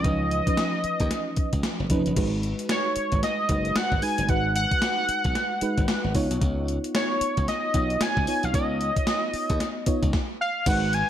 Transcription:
Already playing: E3 F3 C#4 D#4 B4 D#5
0.04 C#2 F3 C#4 D#4 B4, kick, closed hi-hat
0.31 closed hi-hat
0.47 F3 C#4 D#4 B4, kick, closed hi-hat
0.57 snare, closed hi-hat
0.84 muted slap bass stroke, closed hi-hat
1.00 D#2, kick, closed hi-hat
1.11 snare, closed hi-hat
1.37 muted slap bass stroke, kick, closed hi-hat
1.53 C#2, kick, closed hi-hat
1.63 snare, closed hi-hat
1.80 F#1
1.90 F1 F3 C#4 D#4 B4, kick, closed hi-hat
2.06 F#1, closed hi-hat
2.16 G#1 G#3 D#4 F#4 B4, kick, closed hi-hat, crash
2.43 closed hi-hat
2.59 closed hi-hat
2.69 C#5, snare, closed hi-hat
2.96 muted slap bass stroke, closed hi-hat
3.12 G#1, kick, closed hi-hat
3.23 D#5, snare, closed hi-hat
3.49 F#1 G#3 D#4 F#4 B4, kick, closed hi-hat
3.65 closed hi-hat
3.76 F#5, snare, closed hi-hat
3.92 G#1, kick
4.02 G#3 D#4 F#4 B4 G#5, open hi-hat
4.18 F#1, closed hi-hat
4.29 G#1 G#3 D#4 F#4 B4 F#5, kick, closed hi-hat
4.56 F#5, closed hi-hat
4.71 kick, closed hi-hat
4.82 snare, closed hi-hat
5.09 muted slap bass stroke, closed hi-hat
5.24 B1, kick, closed hi-hat
5.35 snare, closed hi-hat
5.61 G#3 D#4 F#4 B4, muted slap bass stroke, closed hi-hat
5.78 G#1, kick, closed hi-hat
5.88 snare, closed hi-hat
6.04 G#1
6.15 C#2 B3 D#4 F4 C#5, kick, open hi-hat
6.31 B1, closed hi-hat
6.41 C#2, kick, closed hi-hat
6.68 closed hi-hat
6.84 closed hi-hat
6.95 C#5, snare, closed hi-hat
7.21 muted slap bass stroke, closed hi-hat
7.37 C#2, kick, closed hi-hat
7.48 D#5, snare, closed hi-hat
7.74 B1 B3 D#4 F4 C#5, kick, closed hi-hat
7.90 closed hi-hat
8.01 G#5, snare, closed hi-hat
8.17 C#2, kick
8.27 B3 D#4 F4 C#5, open hi-hat
8.43 B1 F5, closed hi-hat
8.54 C#2 B3 D#4 F4 C#5 D#5, kick, closed hi-hat
8.81 closed hi-hat
8.96 kick, closed hi-hat
9.07 snare, closed hi-hat
9.34 muted slap bass stroke, open hi-hat
9.50 D#2, kick, closed hi-hat
9.60 snare, closed hi-hat
9.86 B3 D#4 F4 C#5, muted slap bass stroke, kick, closed hi-hat
10.03 C#2, kick, closed hi-hat
10.13 kick, snare
10.41 F5
10.66 G#1 G#3 D#4 F#4 B4 F#5, kick, closed hi-hat, crash, tambourine
10.93 G#5, closed hi-hat

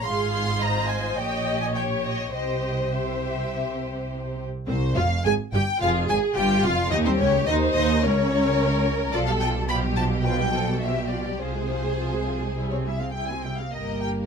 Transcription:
0.05 G#1 G#2 F4 G#4 F5 C6
0.33 C6
0.61 C5 D#5 A#5
0.89 G#5
1.17 A#1 A#2 G4 C#5 D#5 G5
1.61 G#5
1.75 G4 C#5 G5
2.04 D#5
2.33 C2 C3 G4 C5 D#5
2.93 G4 C5 E5
4.66 C2 C4 C5
4.96 F1 F2 F4 F5
5.25 G#1 G#2 G#4 G#5
5.53 G1 G2 G4 G5
5.80 F1 F2 F4 G#4 F5
6.09 G#1 G#2 G#4 G#5
6.35 G1 G2 F4 G4 G5
6.64 F1 F2 F4 F5
6.91 D#2 D#4 G4 D#5
7.05 C2 C4 C5
7.19 C#2 C#4 C#5
7.47 D#2 D#4 C5 D#5
7.75 D#2 D#4 D#5
8.03 C#2 C#4 A#4 C#5
8.31 A#4
9.13 B1 B2 F3 F4 A4 D5
9.27 G3 G4 F5
9.41 F3 F4 G5
9.55 G3 G4
9.69 F3 F4 G4 B5
9.84 G3 G4
9.97 F3 F4 A5
10.11 G3 G4
10.24 F3 F4 B4 G5
10.39 G3 G4
10.53 F3 F4 A4
10.68 G3 G4
10.81 F3 F4 G4 E5
10.96 G3 G4
11.10 F3 F4 D5
11.26 G3 G4
11.39 C2 C3 F3 F4 G#4 C5
11.54 G#3 G#4
11.69 F3 F4
11.83 G#3 G#4
11.98 F3 F4
12.12 G#3 G#4
12.27 F3 F4
12.42 G#3 G#4
12.56 G3 E4
12.71 C4 G4 C#5
12.85 G3 E4 E5
13.00 C4 G4 F5
13.13 G3 E4 G5
13.28 C4 G4 G#5
13.43 G3 E4 G5
13.58 C4 G4 F5
13.72 G1 G2 A#3 G4 A#4 D#5
14.01 G5

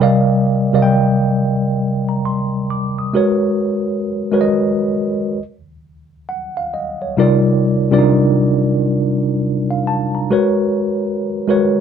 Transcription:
Already playing: G5
0.00 C3 G3 A#4 D5 D#5 F5
0.73 C3 G3 A#4 D5 D#5 F5
0.82 G5
2.09 A#5
2.25 C6
2.70 D6
2.99 D#6
3.14 G#3 F#4 A#4 B4 C#5
4.31 G#3 F#4 A#4 B4 C#5
4.41 D#5
6.29 F#5
6.57 F5
6.74 D#5
7.02 C#5
7.17 C3 G3 D#4 F4 A#4 D5
7.91 C3 G3 D4 F4 A#4 D5
7.99 D#4
9.71 F5
9.87 A5
10.15 A#5
10.30 G#3 F#4 A#4 B4 C#5
11.48 G#3 F#4 A#4 B4 C#5

